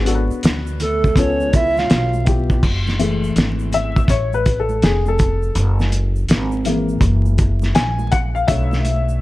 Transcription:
Already playing: upright bass G#1
0.05 upright piano B3 D4 F#4 A4, closed hi-hat, shaker
0.15 upright piano B4
0.30 muted upright bass stroke, shaker
0.43 upright bass D2, snare, closed hi-hat, shaker
0.67 shaker
0.80 trombone A3, recorder A4, closed hi-hat, low conga, shaker
1.04 kick, shaker
1.15 upright bass C#2, upright piano B3 C#4 F4 A4, trombone C#4, kick, closed hi-hat, shaker
1.19 recorder C#5
1.40 high conga, shaker
1.53 trombone E4, recorder E5, kick, closed hi-hat, low conga, shaker
1.77 trombone F4, recorder F5, snare, high conga, shaker
1.90 upright bass B1, snare, closed hi-hat, shaker
2.14 high conga, shaker
2.24 upright piano B3 E4 F4 G4, kick, closed hi-hat, low conga, shaker
2.50 kick, shaker
2.63 upright bass F#1, kick, crash, shaker
2.87 snare, high conga, shaker
2.99 upright piano E3 G#3 A3, closed hi-hat, high conga, shaker
3.24 shaker
3.36 upright bass G#1, snare, closed hi-hat, shaker
3.59 shaker
3.72 upright piano E5, closed hi-hat, low conga, shaker
3.96 kick, shaker
4.08 upright bass A1, upright piano C#5, kick, closed hi-hat, shaker
4.33 upright piano B4, high conga, shaker
4.46 kick, closed hi-hat, shaker
4.60 upright piano A4
4.69 high conga, shaker
4.82 upright bass F1, upright piano G#4, snare, closed hi-hat, shaker
5.06 upright piano A4, high conga, shaker
5.18 kick, closed hi-hat, low conga, shaker
5.43 shaker
5.55 upright bass F#1, closed hi-hat, shaker
5.80 snare, high conga, shaker
5.92 closed hi-hat, high conga, shaker
6.16 shaker
6.28 upright bass G#1, snare, closed hi-hat, shaker
6.52 shaker
6.65 upright piano E3 G#3 A#3, closed hi-hat, low conga, shaker
6.89 shaker
7.01 upright bass F#1, kick, closed hi-hat, shaker
7.25 high conga, shaker
7.38 kick, closed hi-hat, shaker
7.62 snare, high conga, shaker
7.75 upright bass A#1, upright piano G#5, snare, closed hi-hat, shaker
7.99 high conga, shaker
8.11 upright piano F#5, kick, closed hi-hat, low conga, shaker
8.35 upright piano F5, shaker
8.47 upright bass B1, upright piano D3 A3 C#5 E5, kick, closed hi-hat, shaker
8.72 snare, high conga, shaker
8.85 closed hi-hat, high conga, shaker
9.09 shaker

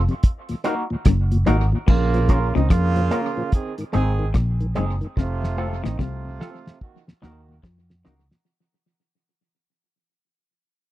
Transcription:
0.08 tonewheel organ F2 C3, closed hi-hat
0.23 kick, closed hi-hat
0.49 tonewheel organ D#2 A#2, closed hi-hat
0.64 clean electric guitar A#3 D#4 F#4 A#4, tonewheel organ A#3 D#4 F#4, closed hi-hat
0.90 tonewheel organ D#2 A#2
1.05 fingered electric bass F#1, clean electric guitar F#2, kick, cross-stick, closed hi-hat
1.31 tonewheel organ D#2 A#2, closed hi-hat
1.46 fingered electric bass G#1, clean electric guitar G#2 A#3 D#4 F#4 A#4, tonewheel organ A#3 D#4 F#4, closed hi-hat
1.72 tonewheel organ D#2 A#2
1.88 fingered electric bass A#1, clean electric guitar A#2, horn section C#3 A#3 F4, kick, crash
2.14 tonewheel organ A#2 F3, closed hi-hat
2.29 clean electric guitar A#3 C#4 F4 A#4, tonewheel organ A#3 C#4 F4, kick, closed hi-hat
2.55 fingered electric bass C#2, tonewheel organ A#2 F3, clean electric guitar C#3, horn section D#3 C4 D#4, cross-stick
2.70 fingered electric bass F2, horn section C#3 A#3 F4, clean electric guitar F3, kick, cross-stick, closed hi-hat
2.96 tonewheel organ A#2 F3, closed hi-hat
3.11 clean electric guitar A#3 C#4 F4 A#4, tonewheel organ A#3 C#4 F4, closed hi-hat
3.37 tonewheel organ A#2 F3
3.52 horn section D#3 C4 G#4, kick, closed hi-hat
3.78 tonewheel organ G#2 D#3, closed hi-hat
3.93 fingered electric bass G#1, clean electric guitar G#2 G#3 C4 D#4 G#4, horn section D#3 C4 G#4, tonewheel organ G#3 C4 D#4, closed hi-hat
4.19 tonewheel organ G#2 D#3
4.34 fingered electric bass A#1, clean electric guitar A#2, kick, cross-stick, closed hi-hat
4.60 tonewheel organ G#2 D#3, closed hi-hat
4.75 fingered electric bass F#1, clean electric guitar F#2 G#3 C4 D#4 G#4, tonewheel organ G#3 C4 D#4, closed hi-hat
5.01 tonewheel organ G#2 D#3, closed hi-hat
5.17 fingered electric bass F1, clean electric guitar F2, horn section C3 A3 F4, kick, snare
5.42 tonewheel organ F2 C3, snare
5.57 clean electric guitar A3 C4 F4 A4, tonewheel organ A3 C4 F4
5.84 fingered electric bass A1, tonewheel organ F2 C3, clean electric guitar A2, horn section D#3 C4 D#4, snare
5.99 fingered electric bass C2, clean electric guitar C3, horn section C3 A3 F4, kick, snare
6.25 tonewheel organ F2 C3
6.40 clean electric guitar A3 C4 F4 A4, tonewheel organ A3 C4 F4, snare
6.66 tonewheel organ F2 C3, snare
6.81 horn section D#3 A#3 F#4, kick
7.07 tonewheel organ D#2 A#2, snare
7.22 fingered electric bass D#2, clean electric guitar D#3 A#3 D#4 F#4 A#4, horn section D#3 A#3 F#4, tonewheel organ A#3 D#4 F#4, snare
7.49 tonewheel organ D#2 A#2
7.63 fingered electric bass F2, clean electric guitar F3, kick, snare
7.90 tonewheel organ D#2 A#2, snare
8.04 fingered electric bass C#2, clean electric guitar C#3 A#3 D#4 F#4 A#4, tonewheel organ A#3 D#4 F#4, snare
8.31 tonewheel organ D#2 A#2, snare

